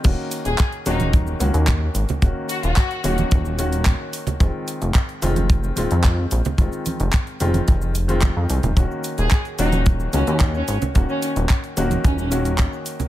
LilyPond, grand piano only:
\new Staff \with { instrumentName = "Grand piano" } { \time 4/4 \key ees \dorian \tempo 4 = 110 <ees bes des' ges'>4. <ees bes des' ges'>4 <ees bes des' ges'>4. | <ees bes des' ges'>4. <ees bes des' ges'>4 <ees bes des' ges'>4. | <ees aes c' f'>4. <ees aes c' f'>4 <ees aes c' f'>4. | <ees aes c' f'>4. <ees aes c' f'>4 r16 <ees aes c' f'>4~ <ees aes c' f'>16 |
<ees bes des' ges'>4. <ees bes des' ges'>4 <ees bes des' ges'>4. | <ees bes des' ges'>4. <ees bes des' ges'>4 <ees bes des' ges'>4. | }